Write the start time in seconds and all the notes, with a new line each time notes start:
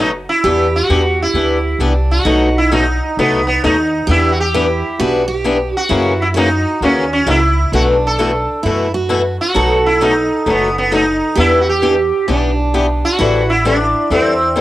Already playing: F#1 F#4
0.00 B2 F#3 A3 D#4 F#4
0.29 E4
0.44 E2 E3 B3 D4 G4
0.76 F#4
0.90 E2 E3 B3 D4 G4
1.22 E4
1.34 D2 E3 B3 D4 G4
1.79 C2 E3 B3 D4 G4
2.11 F#4
2.25 B1 B2 F#3 A3 D#4 F#4
2.58 E4
2.71 B2 F#3 A3 D#4 F#4
3.17 C2 B2 F#3 A3 B3 D#4 F#4
3.47 B3
3.64 D#2 B2 F#3 A3 D#4 F#4
4.07 E2 E3 B3 D4 G4
4.11 E4
4.32 F#4
4.40 G4
4.54 E3 B3 D4 E4 G4
4.99 B1 E3 B3 D4 F#4 G4
5.28 G4
5.44 E3 B3 D4 G4
5.73 F#4
5.77 F#4
5.89 F#2 C#3 E3 A#3 C#4 E4 F#4
6.22 E4
6.34 C#3 E3 A#3 C#4 D#4 F#4
6.81 D#2 C#3 E3 A#3 C#4 F#4
7.13 C#4
7.26 C#2 C#3 E3 A#3 C#4 E4 F#4
7.72 B1 B2 E3 A3 D4 E4 F#4
8.07 A4
8.18 B2 E3 A3 E4 F#4
8.63 F#2 B2 E3 A3 E4 F#4
8.94 F#4
9.09 B2 E3 A3 E4 F#4
9.41 F#4
9.54 B1 B2 F#3 A3 D#4 F#4 A4
9.86 E4
10.01 B2 F#3 A3 D#4 F#4
10.46 F#1 B2 F#3 A3 D#4 F#4
10.50 B3
10.78 B3
10.91 B2 F#3 A3 D#4 F#4
11.35 E2 E3 B3 D4 G4
11.40 E4
11.61 F#4
11.69 G4
11.82 E3 B3 D4 G4
12.28 B1 E3 B3 D4 G4
12.74 E3 B3 D4 G4
13.05 F#4
13.19 A1 E3 G3 C4 E4 A4
13.50 E4
13.65 E3 G3 C4 D4 E4 A4
14.10 E2 E3 G3 C4 E4 A4
14.56 E3 G3 C4 E4 A4